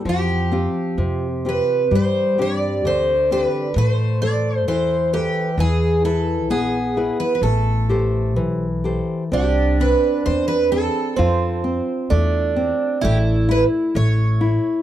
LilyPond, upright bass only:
\new Staff \with { instrumentName = "Upright bass" } { \clef bass \time 2/4 \key a \minor \tempo 4 = 65 f,4 f,4 | g,4 d,4 | a,4 e,4 | e,4 bes,,4 |
a,,4 b,,4 | \key c \major c,4 e,4 | f,4 e,4 | a,,4 a,,4 | }